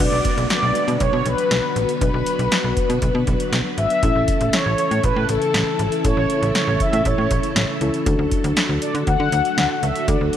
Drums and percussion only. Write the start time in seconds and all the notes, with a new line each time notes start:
0.00 kick, closed hi-hat, crash
0.25 kick, closed hi-hat
0.38 closed hi-hat
0.50 snare, closed hi-hat
0.75 closed hi-hat
0.88 closed hi-hat
1.00 kick, closed hi-hat
1.26 closed hi-hat
1.38 closed hi-hat
1.51 snare, closed hi-hat
1.76 closed hi-hat
1.89 closed hi-hat
2.01 kick, closed hi-hat
2.26 closed hi-hat
2.39 closed hi-hat
2.52 snare, closed hi-hat
2.77 kick, closed hi-hat
2.90 closed hi-hat
3.02 kick, closed hi-hat
3.27 kick, closed hi-hat
3.40 closed hi-hat
3.53 snare, closed hi-hat
3.78 closed hi-hat
3.90 closed hi-hat
4.03 kick, closed hi-hat
4.28 kick, closed hi-hat
4.41 closed hi-hat
4.53 snare, closed hi-hat
4.78 closed hi-hat
4.91 closed hi-hat
5.04 kick, closed hi-hat
5.29 closed hi-hat
5.42 closed hi-hat
5.54 snare, closed hi-hat
5.79 closed hi-hat
5.92 closed hi-hat
6.05 kick, closed hi-hat
6.30 closed hi-hat
6.43 closed hi-hat
6.55 snare, closed hi-hat
6.80 kick, closed hi-hat
6.93 closed hi-hat
7.05 kick, closed hi-hat
7.31 kick, closed hi-hat
7.43 closed hi-hat
7.56 snare, closed hi-hat
7.81 closed hi-hat
7.94 closed hi-hat
8.06 kick, closed hi-hat
8.31 kick, closed hi-hat
8.44 closed hi-hat
8.57 snare, closed hi-hat
8.82 closed hi-hat
8.95 closed hi-hat
9.07 kick, closed hi-hat
9.32 closed hi-hat
9.45 closed hi-hat
9.58 snare, closed hi-hat
9.83 closed hi-hat
9.96 closed hi-hat
10.08 kick, closed hi-hat
10.33 closed hi-hat